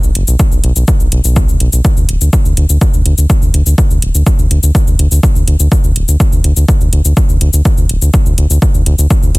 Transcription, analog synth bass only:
0.03 B1
0.15 F#1
0.28 B1
0.52 B1
0.64 B1
0.76 B1
1.00 B1
1.12 B1
1.24 B1
1.49 C#2
1.60 B1
1.73 B1
1.97 D2
2.09 D1
2.21 D2
2.45 D2
2.57 D2
2.69 D2
2.94 D2
3.05 D2
3.18 D2
3.42 D2
3.54 D2
3.66 D2
3.90 D2
4.02 D1
4.15 D2
4.39 D2
4.51 D2
4.63 D2
4.87 D2
4.99 D2
5.11 D2
5.36 D2
5.47 D2
5.60 D2
5.84 D2
5.96 D1
6.08 D2
6.32 D2
6.44 D2
6.57 D2
6.81 D2
6.93 D2
7.05 D2
7.29 D2
7.41 D2
7.53 D2
7.78 D2
7.89 D1
8.02 D2
8.26 D2
8.38 D2
8.50 D2
8.74 D2
8.86 D2
8.99 D2
9.23 D2
9.35 D2

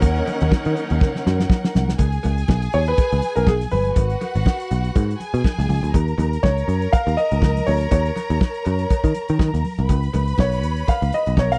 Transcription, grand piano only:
Already playing: D#5
2.74 C#5
2.88 B4
3.36 A#4
3.47 G#4
3.71 B4
6.43 C#5
6.93 F5
7.17 D#5
7.67 C#5
7.92 C#5
10.40 C#5
10.89 F5
11.14 D#5
11.39 C#5
11.52 F5

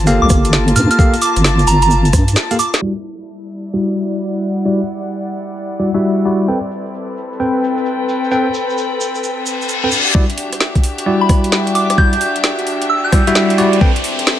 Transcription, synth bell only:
0.22 D6
0.76 F6
0.91 F6
1.22 D6
1.67 A#5
1.82 A#5
2.59 D6
11.21 B5
11.75 D6
11.90 D6
11.98 G6
12.90 E6
13.04 G6

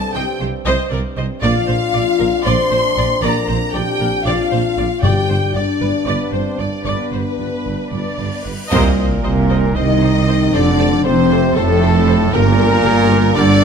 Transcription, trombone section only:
Already playing: G2 C4
1.42 F2 D4
5.03 G2 D4
8.70 A#2
9.77 D#3
10.55 D3
11.06 C3
11.58 A2
12.35 A#2
13.35 D3

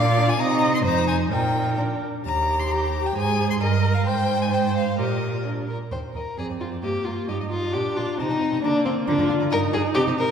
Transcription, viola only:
Already playing: D5
0.40 D#5
0.85 C5
1.32 A#4
2.71 G4
3.16 G#4
3.62 A#4
4.06 C5
4.51 C5
4.99 A#4
6.38 C4
6.83 A#3
7.28 D#4
7.73 D4
8.18 C4
8.62 A#3
9.06 F4
9.51 D#4

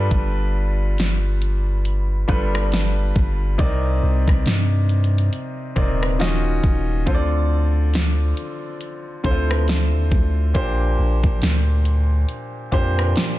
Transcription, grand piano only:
Already playing: G3 D4 F4 A4 B4
2.28 G3 D4 F4 A4 B4
3.58 C3 C4 D#4 A#4 D5
5.76 C3 C4 D#4 A#4 D5
6.19 D#3 C#4 F4 F#4 D#5
7.06 D3 C4 F4 A4 C5
7.14 D5
9.24 D3 C4 E4 A4 C5
9.31 F4
10.54 A#2 A#3 D4 G4 C5
12.72 A#2 A#3 D4 G4 C5

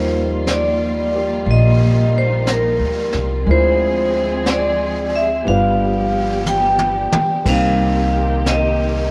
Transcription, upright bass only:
Already playing: D#2
1.46 A#1
2.80 D2
3.14 C2
3.47 D2
5.47 G1
7.13 muted upright bass stroke
7.45 C2

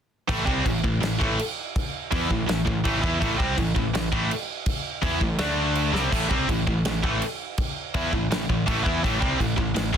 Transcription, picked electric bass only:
0.29 A1
0.47 C2
0.65 A1
0.84 A1
1.02 A1
1.21 A1
2.12 E2
2.30 A1
2.48 A1
2.67 A1
2.85 A1
3.04 E2
3.22 A1
3.40 C2
3.58 A1
3.76 A1
3.94 A1
4.13 A1
5.03 E2
5.20 A1
5.39 D2
5.93 C2
6.12 A1
6.31 C2
6.49 A1
6.67 A1
6.85 A1
7.04 A1
7.95 E2
8.13 A1
8.30 A1
8.49 A1
8.68 A1
8.86 E2
9.04 A1
9.22 C2
9.40 A1
9.58 A1
9.76 A1

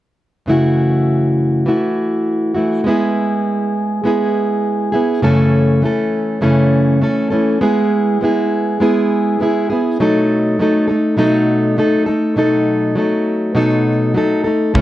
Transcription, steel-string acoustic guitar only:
0.46 F#2 C#3 E3 A3 E4
0.51 F#4
1.66 E3 A3 E4 F#4
2.55 E3 A3 E4 F#4
2.84 G#3 B3 E4
2.89 G#4
4.04 G#3 B3 E4 G#4
4.92 B3 E4 G#4
5.22 F#2 C#3 E3 A3 C#4 A4
5.82 E3 A3 C#4 A4
6.41 F#2 C#3 E3 A3 C#4 A4
7.01 E3 A3 C#4 A4
7.30 E3 A3 C#4 A4
7.61 G#3 B3 E4 G#4
8.21 G#3 B3 E4 G#4
8.80 G#3 B3 E4 G#4
9.40 G#3 B3 E4 G#4
9.70 B3 E4 G#4
10.00 B2 F#3 A3 D#4 A4
10.59 F#3 A3 D#4 A4
10.88 A3 D#4 A4
11.17 B2 F#3 A3 D#4 A4
11.77 F#3 A3 D#4 A4
12.06 A3 D#4 A4
12.36 B2 F#3 A3 D#4 A4
12.95 F#3 A3 D#4 A4
13.55 B2 F#3 A3 D#4 A4
14.14 F#3 A3 D#4 A4
14.44 A3 D#4 A4
14.74 F#2 C#3 E3 A3 C#4 A4

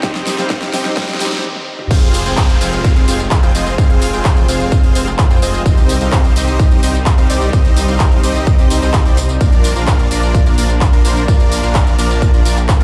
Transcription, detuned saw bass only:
0.03 C2
0.38 C2
0.73 C2
1.09 C2
1.91 F1
2.26 F1
2.61 F1
2.96 F1
3.08 F1
3.43 F1
3.55 F1
3.78 F1
4.13 F1
4.49 F1
4.84 F1
4.95 F1
5.31 F2
5.42 F1
5.66 C2
6.01 C2
6.36 C2
6.71 C2
6.83 C2
7.18 C2
7.30 C2
7.53 C2
7.88 C2
8.24 C2
8.59 C2
8.71 C2
8.82 C2
9.06 C2
9.41 A#1
9.76 A#1
10.11 A#1
10.46 A#1
10.58 A#1
10.93 A#1
11.05 A#1
11.28 A#1
11.63 A#1
11.99 A#1
12.34 A#1
12.45 A#1
12.81 A#1

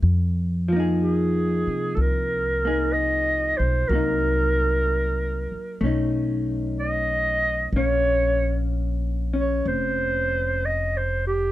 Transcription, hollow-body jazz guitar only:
0.68 F3
0.73 A#3 D#4
0.80 G#4
2.65 A#3 D#4 G#4
3.90 F#3 A#3
3.95 D#4
5.81 A3 C#4
5.85 D#4
7.76 A#3 C#4
9.34 C#4

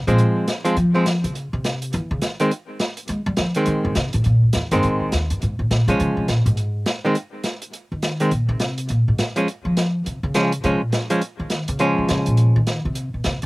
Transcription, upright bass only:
0.07 A#2
0.77 F3
1.24 C#3
1.53 C3
1.94 E3
2.11 C#3
3.09 G#3
3.26 G3
3.38 F3
3.55 E3
3.67 D#3
3.85 C#3
3.96 C3
4.14 A2
4.26 A#2
4.43 C#2
4.55 E2
4.72 G2
4.84 G#2
5.01 C2
5.13 D#2
5.31 G2
5.43 G#2
5.59 A2
5.71 A#2
5.88 C3
6.00 C#3
6.17 C3
6.28 A#2
6.46 G#2
7.92 D#3
8.32 A#2
8.49 C3
8.90 A#2
9.08 G#2
9.65 F3
10.07 C3
10.23 C#3
10.64 C3
10.82 A#2
11.40 D#3
11.69 C#3
11.98 C3
12.10 C#3
12.27 A#2
12.56 D#3
12.85 C3
13.14 B2
13.26 C3

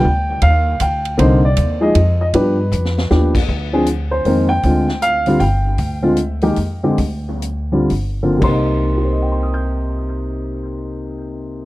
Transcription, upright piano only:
Already playing: G5
0.42 F5
0.81 G5
1.18 D3 A#3 C4 D#4 C5
1.45 D5
1.81 F3 G#3 D#4 G#4 D#5
2.21 D#5
2.34 F3 B3 D4 G4 B4
3.10 F3 B3 D4 G4
3.73 F3 C4 D4 G#4
4.11 C5
4.26 D#3 G#3 A#3 C4
4.49 G5
4.64 D3 G#3 C4 F4
5.02 F5
5.27 D3 G3 C4 F4
5.40 G5
6.02 D3 G#3 C4 F4
6.42 D#3 G#3 A#3 G4
6.83 D3 G#3 C4 G4
7.72 D3 G3 C4 F4
8.23 D3 A#3 C4 F4
8.37 C3 A#3
8.44 C4 C6
8.48 D#4
8.97 G4
9.05 C5
9.13 D#5
9.22 G5
9.32 C6
9.43 D#6
9.54 G6

